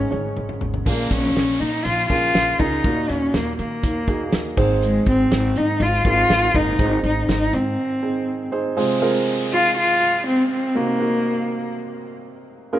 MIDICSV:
0, 0, Header, 1, 6, 480
1, 0, Start_track
1, 0, Tempo, 494641
1, 836, Time_signature, 4, 2, 24, 8
1, 12413, End_track
2, 0, Start_track
2, 0, Title_t, "Felt piano"
2, 0, Program_c, 0, 0
2, 0, Note_on_c, 0, 44, 65
2, 0, Note_on_c, 0, 51, 61
2, 84, Control_c, 0, 64, 127
2, 103, Note_on_c, 0, 68, 65
2, 104, Note_on_c, 0, 61, 73
2, 104, Note_on_c, 0, 73, 78
2, 105, Note_on_c, 0, 63, 64
2, 553, Note_off_c, 0, 44, 0
2, 554, Note_off_c, 0, 51, 0
2, 681, Note_off_c, 0, 61, 0
2, 681, Note_off_c, 0, 68, 0
2, 681, Note_off_c, 0, 73, 0
2, 682, Note_off_c, 0, 63, 0
2, 839, Note_on_c, 0, 53, 57
2, 839, Note_on_c, 0, 68, 59
2, 840, Note_on_c, 0, 46, 57
2, 840, Note_on_c, 0, 61, 65
2, 840, Note_on_c, 0, 65, 58
2, 841, Note_on_c, 0, 70, 75
2, 850, Control_c, 0, 64, 0
2, 992, Control_c, 0, 64, 127
2, 1518, Note_off_c, 0, 53, 0
2, 1519, Note_off_c, 0, 46, 0
2, 1600, Note_off_c, 0, 61, 0
2, 1600, Note_off_c, 0, 65, 0
2, 1600, Note_off_c, 0, 68, 0
2, 1600, Note_off_c, 0, 70, 0
2, 2036, Note_on_c, 0, 65, 62
2, 2037, Note_on_c, 0, 70, 74
2, 2038, Note_on_c, 0, 61, 66
2, 2038, Note_on_c, 0, 68, 61
2, 2417, Note_off_c, 0, 61, 0
2, 2417, Note_off_c, 0, 65, 0
2, 2417, Note_off_c, 0, 70, 0
2, 2418, Note_off_c, 0, 68, 0
2, 2520, Note_on_c, 0, 65, 59
2, 2520, Note_on_c, 0, 68, 61
2, 2520, Note_on_c, 0, 70, 71
2, 2523, Note_on_c, 0, 61, 62
2, 2708, Note_off_c, 0, 65, 0
2, 2708, Note_off_c, 0, 68, 0
2, 2708, Note_off_c, 0, 70, 0
2, 2709, Note_off_c, 0, 61, 0
2, 2763, Note_on_c, 0, 58, 66
2, 2763, Note_on_c, 0, 63, 66
2, 2764, Note_on_c, 0, 46, 58
2, 2764, Note_on_c, 0, 66, 63
2, 2764, Note_on_c, 0, 70, 76
2, 2768, Control_c, 0, 64, 0
2, 2932, Control_c, 0, 64, 127
2, 3440, Note_off_c, 0, 46, 0
2, 3521, Note_off_c, 0, 58, 0
2, 3521, Note_off_c, 0, 63, 0
2, 3521, Note_off_c, 0, 66, 0
2, 3521, Note_off_c, 0, 70, 0
2, 3958, Note_on_c, 0, 68, 74
2, 3960, Note_on_c, 0, 63, 63
2, 3960, Note_on_c, 0, 66, 62
2, 3963, Note_on_c, 0, 58, 72
2, 4337, Note_off_c, 0, 68, 0
2, 4338, Note_off_c, 0, 63, 0
2, 4338, Note_off_c, 0, 66, 0
2, 4339, Note_off_c, 0, 58, 0
2, 4437, Note_on_c, 0, 72, 97
2, 4438, Note_on_c, 0, 44, 73
2, 4438, Note_on_c, 0, 63, 78
2, 4438, Note_on_c, 0, 68, 82
2, 4440, Note_on_c, 0, 60, 89
2, 4441, Note_on_c, 0, 51, 73
2, 4447, Control_c, 0, 64, 0
2, 4638, Control_c, 0, 64, 127
2, 5117, Note_off_c, 0, 44, 0
2, 5118, Note_off_c, 0, 51, 0
2, 5203, Note_off_c, 0, 63, 0
2, 5203, Note_off_c, 0, 68, 0
2, 5203, Note_off_c, 0, 72, 0
2, 5204, Note_off_c, 0, 60, 0
2, 5872, Note_on_c, 0, 60, 73
2, 5874, Note_on_c, 0, 63, 63
2, 5874, Note_on_c, 0, 70, 80
2, 5878, Note_on_c, 0, 68, 69
2, 6254, Note_off_c, 0, 60, 0
2, 6255, Note_off_c, 0, 63, 0
2, 6255, Note_off_c, 0, 70, 0
2, 6257, Note_off_c, 0, 68, 0
2, 6347, Note_on_c, 0, 60, 62
2, 6347, Note_on_c, 0, 70, 73
2, 6349, Note_on_c, 0, 44, 60
2, 6349, Note_on_c, 0, 51, 64
2, 6350, Note_on_c, 0, 68, 60
2, 6351, Note_on_c, 0, 63, 61
2, 6541, Note_off_c, 0, 60, 0
2, 6541, Note_off_c, 0, 70, 0
2, 6542, Note_off_c, 0, 68, 0
2, 6543, Note_off_c, 0, 63, 0
2, 6589, Note_on_c, 0, 60, 73
2, 6590, Note_on_c, 0, 68, 66
2, 6591, Note_on_c, 0, 63, 68
2, 6592, Note_on_c, 0, 72, 76
2, 7032, Note_off_c, 0, 44, 0
2, 7032, Note_off_c, 0, 51, 0
2, 7354, Note_off_c, 0, 60, 0
2, 7354, Note_off_c, 0, 68, 0
2, 7355, Note_off_c, 0, 63, 0
2, 7355, Note_off_c, 0, 72, 0
2, 7786, Note_on_c, 0, 63, 66
2, 7787, Note_on_c, 0, 60, 74
2, 7787, Note_on_c, 0, 68, 67
2, 7790, Note_on_c, 0, 72, 79
2, 8171, Note_off_c, 0, 60, 0
2, 8171, Note_off_c, 0, 63, 0
2, 8171, Note_off_c, 0, 68, 0
2, 8173, Note_off_c, 0, 72, 0
2, 8267, Note_on_c, 0, 60, 81
2, 8267, Note_on_c, 0, 63, 77
2, 8269, Note_on_c, 0, 72, 91
2, 8270, Note_on_c, 0, 68, 73
2, 8460, Note_off_c, 0, 60, 0
2, 8461, Note_off_c, 0, 63, 0
2, 8462, Note_off_c, 0, 68, 0
2, 8462, Note_off_c, 0, 72, 0
2, 8506, Note_on_c, 0, 72, 96
2, 8507, Note_on_c, 0, 56, 88
2, 8508, Note_on_c, 0, 48, 79
2, 8508, Note_on_c, 0, 60, 80
2, 8509, Note_on_c, 0, 65, 82
2, 8510, Note_on_c, 0, 68, 78
2, 8526, Control_c, 0, 64, 0
2, 8692, Control_c, 0, 64, 127
2, 8700, Note_off_c, 0, 56, 0
2, 8700, Note_off_c, 0, 72, 0
2, 8701, Note_off_c, 0, 60, 0
2, 8702, Note_off_c, 0, 65, 0
2, 8702, Note_off_c, 0, 68, 0
2, 8747, Note_on_c, 0, 56, 90
2, 8748, Note_on_c, 0, 60, 84
2, 8751, Note_on_c, 0, 65, 85
2, 8751, Note_on_c, 0, 68, 84
2, 8752, Note_on_c, 0, 70, 102
2, 9191, Note_off_c, 0, 48, 0
2, 9512, Note_off_c, 0, 56, 0
2, 9513, Note_off_c, 0, 60, 0
2, 9514, Note_off_c, 0, 65, 0
2, 9514, Note_off_c, 0, 68, 0
2, 9515, Note_off_c, 0, 70, 0
2, 10431, Note_on_c, 0, 70, 82
2, 10433, Note_on_c, 0, 58, 76
2, 10434, Note_on_c, 0, 63, 68
2, 10435, Note_on_c, 0, 60, 68
2, 10435, Note_on_c, 0, 66, 68
2, 10436, Note_on_c, 0, 48, 68
2, 10447, Control_c, 0, 64, 0
2, 10588, Control_c, 0, 64, 127
2, 10623, Note_off_c, 0, 58, 0
2, 10623, Note_off_c, 0, 70, 0
2, 10624, Note_off_c, 0, 63, 0
2, 10624, Note_off_c, 0, 66, 0
2, 10625, Note_off_c, 0, 60, 0
2, 10670, Note_on_c, 0, 58, 80
2, 10674, Note_on_c, 0, 60, 70
2, 10674, Note_on_c, 0, 70, 84
2, 10675, Note_on_c, 0, 63, 71
2, 10675, Note_on_c, 0, 66, 76
2, 11115, Note_off_c, 0, 48, 0
2, 11434, Note_off_c, 0, 58, 0
2, 11436, Note_off_c, 0, 60, 0
2, 11436, Note_off_c, 0, 63, 0
2, 11436, Note_off_c, 0, 66, 0
2, 11436, Note_off_c, 0, 70, 0
2, 12350, Note_on_c, 0, 68, 85
2, 12351, Note_on_c, 0, 65, 82
2, 12352, Note_on_c, 0, 58, 91
2, 12354, Note_on_c, 0, 61, 88
2, 12354, Note_on_c, 0, 70, 105
2, 12363, Control_c, 0, 64, 0
2, 12413, Note_off_c, 0, 58, 0
2, 12413, Note_off_c, 0, 61, 0
2, 12413, Note_off_c, 0, 65, 0
2, 12413, Note_off_c, 0, 68, 0
2, 12413, Note_off_c, 0, 70, 0
2, 12413, End_track
3, 0, Start_track
3, 0, Title_t, "Cello"
3, 0, Program_c, 1, 42
3, 0, Note_on_c, 1, 61, 98
3, 553, Note_off_c, 1, 61, 0
3, 835, Note_on_c, 1, 58, 85
3, 1080, Note_on_c, 1, 61, 89
3, 1095, Note_off_c, 1, 58, 0
3, 1551, Note_on_c, 1, 63, 86
3, 1566, Note_off_c, 1, 61, 0
3, 1780, Note_on_c, 1, 65, 97
3, 1795, Note_off_c, 1, 63, 0
3, 2019, Note_off_c, 1, 65, 0
3, 2025, Note_on_c, 1, 65, 104
3, 2514, Note_on_c, 1, 63, 93
3, 2528, Note_off_c, 1, 65, 0
3, 2998, Note_on_c, 1, 61, 81
3, 3012, Note_off_c, 1, 63, 0
3, 3239, Note_on_c, 1, 58, 88
3, 3254, Note_off_c, 1, 61, 0
3, 3467, Note_off_c, 1, 58, 0
3, 3473, Note_on_c, 1, 58, 81
3, 4394, Note_off_c, 1, 58, 0
3, 4684, Note_on_c, 1, 56, 94
3, 4902, Note_off_c, 1, 56, 0
3, 4920, Note_on_c, 1, 60, 99
3, 5408, Note_on_c, 1, 63, 98
3, 5422, Note_off_c, 1, 60, 0
3, 5649, Note_on_c, 1, 65, 99
3, 5664, Note_off_c, 1, 63, 0
3, 5881, Note_off_c, 1, 65, 0
3, 5894, Note_on_c, 1, 65, 108
3, 6363, Note_on_c, 1, 63, 102
3, 6377, Note_off_c, 1, 65, 0
3, 6838, Note_off_c, 1, 63, 0
3, 6845, Note_on_c, 1, 63, 88
3, 7063, Note_off_c, 1, 63, 0
3, 7083, Note_on_c, 1, 63, 97
3, 7326, Note_on_c, 1, 60, 89
3, 7341, Note_off_c, 1, 63, 0
3, 8280, Note_off_c, 1, 60, 0
3, 9244, Note_on_c, 1, 65, 105
3, 9462, Note_off_c, 1, 65, 0
3, 9481, Note_on_c, 1, 65, 109
3, 9924, Note_off_c, 1, 65, 0
3, 9963, Note_on_c, 1, 60, 92
3, 10181, Note_off_c, 1, 60, 0
3, 10193, Note_on_c, 1, 60, 90
3, 10439, Note_on_c, 1, 58, 94
3, 10454, Note_off_c, 1, 60, 0
3, 11396, Note_off_c, 1, 58, 0
3, 12413, End_track
4, 0, Start_track
4, 0, Title_t, "Upright bass"
4, 0, Program_c, 2, 32
4, 119, Note_on_c, 2, 32, 83
4, 314, Note_off_c, 2, 32, 0
4, 360, Note_on_c, 2, 32, 71
4, 555, Note_off_c, 2, 32, 0
4, 602, Note_on_c, 2, 32, 71
4, 796, Note_off_c, 2, 32, 0
4, 839, Note_on_c, 2, 34, 88
4, 1034, Note_off_c, 2, 34, 0
4, 1076, Note_on_c, 2, 34, 93
4, 1272, Note_off_c, 2, 34, 0
4, 1320, Note_on_c, 2, 34, 83
4, 1515, Note_off_c, 2, 34, 0
4, 1558, Note_on_c, 2, 46, 89
4, 1754, Note_off_c, 2, 46, 0
4, 1797, Note_on_c, 2, 34, 100
4, 1993, Note_off_c, 2, 34, 0
4, 2037, Note_on_c, 2, 34, 86
4, 2233, Note_off_c, 2, 34, 0
4, 2279, Note_on_c, 2, 34, 82
4, 2474, Note_off_c, 2, 34, 0
4, 2521, Note_on_c, 2, 37, 79
4, 2715, Note_off_c, 2, 37, 0
4, 2760, Note_on_c, 2, 39, 87
4, 2954, Note_off_c, 2, 39, 0
4, 3003, Note_on_c, 2, 39, 89
4, 3196, Note_off_c, 2, 39, 0
4, 3241, Note_on_c, 2, 39, 94
4, 3435, Note_off_c, 2, 39, 0
4, 3483, Note_on_c, 2, 51, 85
4, 3676, Note_off_c, 2, 51, 0
4, 3720, Note_on_c, 2, 39, 94
4, 3914, Note_off_c, 2, 39, 0
4, 3956, Note_on_c, 2, 39, 90
4, 4152, Note_off_c, 2, 39, 0
4, 4198, Note_on_c, 2, 39, 88
4, 4393, Note_off_c, 2, 39, 0
4, 4437, Note_on_c, 2, 32, 91
4, 4829, Note_off_c, 2, 32, 0
4, 4916, Note_on_c, 2, 32, 95
4, 5111, Note_off_c, 2, 32, 0
4, 5157, Note_on_c, 2, 32, 93
4, 5352, Note_off_c, 2, 32, 0
4, 5394, Note_on_c, 2, 44, 84
4, 5591, Note_off_c, 2, 44, 0
4, 5627, Note_on_c, 2, 32, 109
4, 5826, Note_off_c, 2, 32, 0
4, 5870, Note_on_c, 2, 32, 92
4, 6068, Note_off_c, 2, 32, 0
4, 6110, Note_on_c, 2, 32, 92
4, 6308, Note_off_c, 2, 32, 0
4, 6352, Note_on_c, 2, 30, 88
4, 6549, Note_off_c, 2, 30, 0
4, 6589, Note_on_c, 2, 32, 91
4, 6787, Note_off_c, 2, 32, 0
4, 6825, Note_on_c, 2, 32, 87
4, 7025, Note_off_c, 2, 32, 0
4, 7070, Note_on_c, 2, 32, 94
4, 7268, Note_off_c, 2, 32, 0
4, 7307, Note_on_c, 2, 44, 99
4, 7506, Note_off_c, 2, 44, 0
4, 12413, End_track
5, 0, Start_track
5, 0, Title_t, "Downlifter"
5, 0, Program_c, 3, 103
5, 835, Note_on_c, 3, 60, 69
5, 4673, Note_off_c, 3, 60, 0
5, 8510, Note_on_c, 3, 60, 80
5, 12351, Note_off_c, 3, 60, 0
5, 12413, End_track
6, 0, Start_track
6, 0, Title_t, "Drums"
6, 115, Note_on_c, 9, 48, 56
6, 212, Note_off_c, 9, 48, 0
6, 355, Note_on_c, 9, 47, 69
6, 452, Note_off_c, 9, 47, 0
6, 477, Note_on_c, 9, 45, 66
6, 574, Note_off_c, 9, 45, 0
6, 593, Note_on_c, 9, 43, 85
6, 690, Note_off_c, 9, 43, 0
6, 716, Note_on_c, 9, 43, 73
6, 813, Note_off_c, 9, 43, 0
6, 836, Note_on_c, 9, 36, 102
6, 838, Note_on_c, 9, 49, 87
6, 933, Note_off_c, 9, 36, 0
6, 935, Note_off_c, 9, 49, 0
6, 1077, Note_on_c, 9, 36, 88
6, 1079, Note_on_c, 9, 42, 69
6, 1174, Note_off_c, 9, 36, 0
6, 1176, Note_off_c, 9, 42, 0
6, 1323, Note_on_c, 9, 42, 84
6, 1326, Note_on_c, 9, 38, 101
6, 1420, Note_off_c, 9, 42, 0
6, 1423, Note_off_c, 9, 38, 0
6, 1560, Note_on_c, 9, 42, 68
6, 1657, Note_off_c, 9, 42, 0
6, 1803, Note_on_c, 9, 42, 88
6, 1900, Note_off_c, 9, 42, 0
6, 2037, Note_on_c, 9, 36, 85
6, 2043, Note_on_c, 9, 42, 61
6, 2134, Note_off_c, 9, 36, 0
6, 2140, Note_off_c, 9, 42, 0
6, 2282, Note_on_c, 9, 38, 112
6, 2284, Note_on_c, 9, 42, 95
6, 2379, Note_off_c, 9, 38, 0
6, 2381, Note_off_c, 9, 42, 0
6, 2520, Note_on_c, 9, 36, 87
6, 2520, Note_on_c, 9, 46, 67
6, 2617, Note_off_c, 9, 36, 0
6, 2617, Note_off_c, 9, 46, 0
6, 2759, Note_on_c, 9, 42, 91
6, 2760, Note_on_c, 9, 36, 98
6, 2856, Note_off_c, 9, 42, 0
6, 2857, Note_off_c, 9, 36, 0
6, 2999, Note_on_c, 9, 42, 72
6, 3003, Note_on_c, 9, 38, 36
6, 3096, Note_off_c, 9, 42, 0
6, 3100, Note_off_c, 9, 38, 0
6, 3239, Note_on_c, 9, 42, 85
6, 3242, Note_on_c, 9, 38, 107
6, 3336, Note_off_c, 9, 42, 0
6, 3339, Note_off_c, 9, 38, 0
6, 3481, Note_on_c, 9, 42, 68
6, 3578, Note_off_c, 9, 42, 0
6, 3721, Note_on_c, 9, 36, 85
6, 3722, Note_on_c, 9, 42, 97
6, 3819, Note_off_c, 9, 36, 0
6, 3819, Note_off_c, 9, 42, 0
6, 3957, Note_on_c, 9, 36, 87
6, 3960, Note_on_c, 9, 42, 69
6, 4054, Note_off_c, 9, 36, 0
6, 4057, Note_off_c, 9, 42, 0
6, 4197, Note_on_c, 9, 38, 118
6, 4199, Note_on_c, 9, 42, 90
6, 4294, Note_off_c, 9, 38, 0
6, 4296, Note_off_c, 9, 42, 0
6, 4438, Note_on_c, 9, 57, 69
6, 4439, Note_on_c, 9, 36, 106
6, 4535, Note_off_c, 9, 57, 0
6, 4536, Note_off_c, 9, 36, 0
6, 4682, Note_on_c, 9, 42, 89
6, 4779, Note_off_c, 9, 42, 0
6, 4913, Note_on_c, 9, 42, 75
6, 4915, Note_on_c, 9, 36, 94
6, 5010, Note_off_c, 9, 42, 0
6, 5012, Note_off_c, 9, 36, 0
6, 5157, Note_on_c, 9, 42, 91
6, 5160, Note_on_c, 9, 38, 104
6, 5255, Note_off_c, 9, 42, 0
6, 5257, Note_off_c, 9, 38, 0
6, 5391, Note_on_c, 9, 42, 75
6, 5488, Note_off_c, 9, 42, 0
6, 5633, Note_on_c, 9, 42, 92
6, 5730, Note_off_c, 9, 42, 0
6, 5870, Note_on_c, 9, 36, 90
6, 5873, Note_on_c, 9, 42, 70
6, 5967, Note_off_c, 9, 36, 0
6, 5970, Note_off_c, 9, 42, 0
6, 6114, Note_on_c, 9, 38, 117
6, 6116, Note_on_c, 9, 42, 91
6, 6211, Note_off_c, 9, 38, 0
6, 6213, Note_off_c, 9, 42, 0
6, 6352, Note_on_c, 9, 36, 90
6, 6353, Note_on_c, 9, 46, 66
6, 6449, Note_off_c, 9, 36, 0
6, 6450, Note_off_c, 9, 46, 0
6, 6590, Note_on_c, 9, 36, 111
6, 6591, Note_on_c, 9, 42, 87
6, 6687, Note_off_c, 9, 36, 0
6, 6688, Note_off_c, 9, 42, 0
6, 6828, Note_on_c, 9, 42, 76
6, 6925, Note_off_c, 9, 42, 0
6, 7074, Note_on_c, 9, 42, 89
6, 7077, Note_on_c, 9, 38, 105
6, 7171, Note_off_c, 9, 42, 0
6, 7174, Note_off_c, 9, 38, 0
6, 7309, Note_on_c, 9, 42, 73
6, 7406, Note_off_c, 9, 42, 0
6, 12413, End_track
0, 0, End_of_file